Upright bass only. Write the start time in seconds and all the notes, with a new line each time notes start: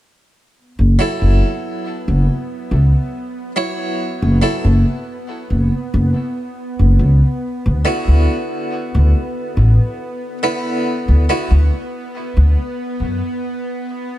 0.79 F#1
1.22 F#1
2.08 F#1
2.71 C#2
4.22 F#1
4.64 F#1
5.50 F#1
5.94 F#1
6.79 F#1
6.99 C#2
7.66 D2
8.07 D2
8.95 D2
9.57 A1
11.08 D2
11.51 D2
12.37 D2
13.00 F#2